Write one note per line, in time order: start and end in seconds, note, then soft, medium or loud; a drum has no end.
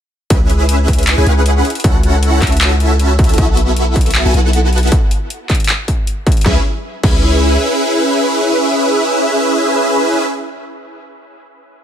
0.30 1.16 C#2 loud
0.30 1.15 C#4 medium
0.30 1.15 E4 medium
0.30 1.15 G#4 medium
0.30 1.15 B4 medium
0.30 1.15 E5 medium
0.30 kick loud
0.30 closed hi-hat medium
0.50 closed hi-hat medium
0.69 closed hi-hat medium
0.88 kick medium
0.88 closed hi-hat medium
0.93 closed hi-hat medium
0.99 closed hi-hat medium
1.03 closed hi-hat medium
1.07 clap loud
1.07 closed hi-hat medium
1.18 1.25 C#2 loud
1.18 1.24 C#4 loud
1.18 1.24 E4 medium
1.18 1.24 G#4 medium
1.18 1.24 B4 medium
1.18 1.24 G#5 loud
1.27 1.62 C#2 loud
1.27 1.64 C#4 medium
1.27 1.64 E4 medium
1.27 1.64 G#4 medium
1.27 1.64 B4 medium
1.27 1.64 F#5 medium
1.27 closed hi-hat medium
1.46 closed hi-hat medium
1.65 closed hi-hat soft
1.70 closed hi-hat medium
1.75 closed hi-hat medium
1.80 closed hi-hat medium
1.84 2.40 C#2 loud
1.84 2.40 C#4 medium
1.84 2.40 E4 medium
1.84 2.40 F#4 medium
1.84 2.40 A4 medium
1.84 2.40 F#5 loud
1.84 kick loud
1.84 closed hi-hat medium
2.03 closed hi-hat medium
2.23 closed hi-hat medium
2.42 3.40 C#2 loud
2.42 3.36 C#4 medium
2.42 3.36 E4 medium
2.42 3.36 F#4 medium
2.42 3.36 A4 medium
2.42 3.36 E5 loud
2.42 kick medium
2.42 clap soft
2.42 closed hi-hat soft
2.47 closed hi-hat medium
2.52 closed hi-hat soft
2.57 closed hi-hat medium
2.61 clap loud
2.61 closed hi-hat medium
2.80 closed hi-hat medium
2.99 closed hi-hat medium
3.19 kick loud
3.19 closed hi-hat medium
3.24 closed hi-hat medium
3.29 closed hi-hat soft
3.34 closed hi-hat medium
3.38 4.23 B1 loud
3.38 4.23 B3 medium
3.38 4.23 E4 medium
3.38 4.23 F#4 medium
3.38 4.23 A4 medium
3.38 4.23 E5 medium
3.38 kick loud
3.38 closed hi-hat medium
3.57 closed hi-hat medium
3.76 closed hi-hat medium
3.96 kick medium
3.96 closed hi-hat soft
4.01 closed hi-hat medium
4.06 closed hi-hat soft
4.11 closed hi-hat medium
4.15 clap loud
4.15 closed hi-hat medium
4.25 4.32 B1 loud
4.25 4.32 B3 loud
4.25 4.32 E4 medium
4.25 4.32 F#4 medium
4.25 4.32 A4 medium
4.25 4.32 G#5 loud
4.34 4.90 B1 loud
4.34 4.90 B3 medium
4.34 4.90 E4 medium
4.34 4.90 F#4 medium
4.34 4.90 A4 medium
4.34 4.90 F#5 medium
4.34 closed hi-hat medium
4.53 closed hi-hat medium
4.73 closed hi-hat soft
4.78 closed hi-hat medium
4.83 closed hi-hat soft
4.87 closed hi-hat medium
4.92 kick loud
4.92 closed hi-hat medium
5.11 closed hi-hat medium
5.30 closed hi-hat medium
5.50 kick medium
5.50 clap soft
5.50 closed hi-hat soft
5.55 closed hi-hat medium
5.60 closed hi-hat soft
5.64 closed hi-hat medium
5.69 clap loud
5.69 closed hi-hat medium
5.88 kick medium
5.88 closed hi-hat medium
6.07 closed hi-hat medium
6.27 kick loud
6.27 closed hi-hat soft
6.32 closed hi-hat medium
6.37 closed hi-hat soft
6.41 closed hi-hat medium
6.46 6.57 C#2 loud
6.46 6.57 C#4 medium
6.46 6.57 E4 medium
6.46 6.57 G#4 medium
6.46 6.57 B4 medium
6.46 6.57 E5 medium
6.46 kick loud
6.46 snare medium
7.03 7.57 C#2 loud
7.03 10.24 C#4 medium
7.03 10.24 E4 medium
7.03 10.24 G#4 medium
7.03 10.24 B4 medium
7.03 10.24 E5 loud
7.03 kick loud
7.03 crash medium